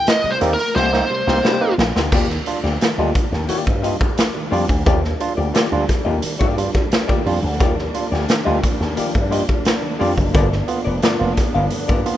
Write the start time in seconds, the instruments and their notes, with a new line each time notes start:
0.07 tine electric piano C4 D#4, lead electric guitar D#5, muted hollow-body jazz guitar stroke, snare, closed hi-hat
0.24 tine electric piano C3 G3, muted slap bass stroke, closed hi-hat
0.31 lead electric guitar C5
0.41 slap bass D#2, tine electric piano A#3 C4 D#4, hollow-body jazz guitar A#3 D#4 G4 D5, snare, closed hi-hat
0.54 lead electric guitar A#4
0.59 muted hollow-body jazz guitar stroke, closed hi-hat
0.75 slap bass C2, hollow-body jazz guitar A#3 D#4 G4 C5, lead electric guitar C5, snare
0.93 tine electric piano A#3 C4 D#4, snare
1.10 tine electric piano C3 G3, muted hollow-body jazz guitar stroke
1.27 slap bass C2, tine electric piano A#3 C4 D#4, hollow-body jazz guitar A#3 D#4 G4 C5, snare
1.43 tine electric piano C3 G3, hollow-body jazz guitar A#3 D#4 G4 C5, snare
1.61 tine electric piano A#3 C4 D#4
1.78 slap bass A#1, muted hollow-body jazz guitar stroke, snare
1.96 slap bass D2, hollow-body jazz guitar A#3 D#4 G4 C5, snare
2.12 slap bass D#2, tine electric piano D#3, string section F3 G3 A#3 D4, hollow-body jazz guitar A#3 F4 G4 D5, kick, crash
2.30 snare
2.46 tine electric piano D4 F4, muted hollow-body jazz guitar stroke, closed hi-hat
2.64 slap bass D2, hollow-body jazz guitar A#3 F4 G4 D5, snare
2.81 tine electric piano D#3, muted hollow-body jazz guitar stroke, snare, closed hi-hat
2.98 slap bass D2, tine electric piano G3 D4 F4, hollow-body jazz guitar A#3 F4 G4 D#5
3.14 tine electric piano D4 F4, muted hollow-body jazz guitar stroke, kick, closed hi-hat
3.32 slap bass D#2, muted hollow-body jazz guitar stroke, snare
3.48 tine electric piano D#3, hollow-body jazz guitar A#3 F4 G4 D5, muted slap bass stroke, closed hi-hat
3.66 slap bass G2, muted hollow-body jazz guitar stroke, kick
3.82 tine electric piano G3 D4 F4, hollow-body jazz guitar A#3 F4 G4 D#5, closed hi-hat
4.00 tine electric piano D4 F4, muted hollow-body jazz guitar stroke, kick
4.17 tine electric piano D4 F4, muted hollow-body jazz guitar stroke, snare, closed hi-hat
4.34 tine electric piano D#3, muted hollow-body jazz guitar stroke
4.51 slap bass F2, tine electric piano G3 D4 F4, hollow-body jazz guitar A#3 F4 G4 D5, open hi-hat
4.68 slap bass D2, muted hollow-body jazz guitar stroke, kick
4.86 slap bass D#2, tine electric piano D#3, hollow-body jazz guitar A#3 F4 G4 D5, kick, closed hi-hat
5.03 muted hollow-body jazz guitar stroke, snare
5.20 tine electric piano D4 F4, muted hollow-body jazz guitar stroke, closed hi-hat
5.37 slap bass D2, hollow-body jazz guitar A#3 F4 G4 D5
5.54 tine electric piano D#3, hollow-body jazz guitar A#3 F4 G4 D5, snare, closed hi-hat
5.72 slap bass D2, tine electric piano G3 D4 F4
5.89 tine electric piano D4 F4, muted hollow-body jazz guitar stroke, kick, snare, closed hi-hat
6.05 slap bass D#2, hollow-body jazz guitar A#3 F4 G4 D#5
6.21 tine electric piano D#3, muted hollow-body jazz guitar stroke, closed hi-hat
6.39 slap bass G2, hollow-body jazz guitar A#3 F4 G4 D5, kick
6.57 tine electric piano G3 D4 F4, muted hollow-body jazz guitar stroke, closed hi-hat
6.75 tine electric piano D4 F4, muted hollow-body jazz guitar stroke, kick, snare
6.92 tine electric piano D4 F4, muted hollow-body jazz guitar stroke, snare, closed hi-hat
7.08 tine electric piano D#3, hollow-body jazz guitar A#3 F4 G4 D5, kick
7.26 slap bass F2, tine electric piano G3 D4 F4, muted hollow-body jazz guitar stroke, open hi-hat
7.43 slap bass D2, muted hollow-body jazz guitar stroke
7.60 slap bass D#2, tine electric piano D#3, hollow-body jazz guitar A#3 F4 G4 D5, kick, closed hi-hat
7.78 snare
7.94 tine electric piano D4 F4, muted hollow-body jazz guitar stroke, closed hi-hat
8.12 slap bass D2, hollow-body jazz guitar A#3 F4 G4 D5, snare
8.28 tine electric piano D#3, muted hollow-body jazz guitar stroke, snare, closed hi-hat
8.45 slap bass D2, tine electric piano G3 D4 F4, hollow-body jazz guitar A#3 F4 G4 D#5
8.62 tine electric piano D4 F4, muted hollow-body jazz guitar stroke, kick, closed hi-hat
8.80 slap bass D#2, muted hollow-body jazz guitar stroke, snare
8.96 tine electric piano D#3, hollow-body jazz guitar A#3 F4 G4 D5, muted slap bass stroke, closed hi-hat
9.15 slap bass G2, kick
9.30 tine electric piano G3 D4 F4, hollow-body jazz guitar A#3 F4 G4 D#5, closed hi-hat
9.49 muted hollow-body jazz guitar stroke, kick
9.65 tine electric piano D4 F4, muted hollow-body jazz guitar stroke, snare, closed hi-hat
9.82 tine electric piano D#3, muted hollow-body jazz guitar stroke
9.99 slap bass F2, tine electric piano G3 D4 F4, hollow-body jazz guitar A#3 F4 G4 D5, open hi-hat
10.18 slap bass F#1, kick
10.34 slap bass G1, tine electric piano G2 D3, hollow-body jazz guitar B3 F4 A#4 D5, string section B3, kick, closed hi-hat
10.50 muted hollow-body jazz guitar stroke, snare
10.68 tine electric piano B3 F4, muted hollow-body jazz guitar stroke, closed hi-hat
10.84 slap bass F1, hollow-body jazz guitar B3 F4 A#4 D5
11.02 tine electric piano G2 D3, hollow-body jazz guitar B3 F4 A#4 D5, snare, closed hi-hat
11.19 slap bass F1, tine electric piano A#3 B3 F4
11.37 tine electric piano B3 F4, muted hollow-body jazz guitar stroke, kick, snare, closed hi-hat
11.54 slap bass G1, hollow-body jazz guitar B3 F4 A#4 F5
11.70 tine electric piano G2 D3, muted hollow-body jazz guitar stroke, closed hi-hat
11.88 slap bass G2, hollow-body jazz guitar B3 F4 A#4 D5, kick
12.05 tine electric piano A#3 B3 F4, muted hollow-body jazz guitar stroke, closed hi-hat